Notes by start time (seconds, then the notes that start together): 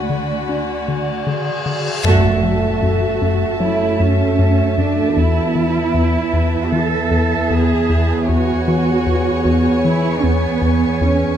Already playing: D2 F#4 D5 F#5 G#5 B5, reverse cymbal
0.10 D3
0.49 D4
0.88 D3
1.27 D3 G#4
1.66 D3
2.04 F#2 A3 F#4 A4 E5 A5, impact
2.43 F#3
2.83 F#2
3.22 F#2
3.60 F#3 C#4 E4 C#5
4.00 F#2 C#4
4.39 F#2
4.78 F#2 D4
5.16 E2 B3 E4 B4
5.55 E3
5.94 E2
6.33 E2
6.72 E3 A4
7.11 E2
7.50 E2 G#4
7.89 E2
8.27 E2 F#4 G#4 C#5 G#5 C#6
8.68 E3
9.06 E2
9.45 E2
9.85 E3 E4
10.23 E2 B3
10.62 E2
11.01 E2 C#4